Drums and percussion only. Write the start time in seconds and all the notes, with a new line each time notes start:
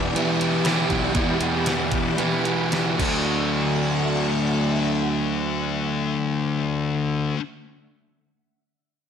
0.16 closed hi-hat
0.41 closed hi-hat
0.65 snare, closed hi-hat
0.90 kick, closed hi-hat
1.15 kick, closed hi-hat
1.41 closed hi-hat
1.66 snare, closed hi-hat
1.92 kick, closed hi-hat
2.18 closed hi-hat
2.45 closed hi-hat
2.72 snare, closed hi-hat
2.99 kick, crash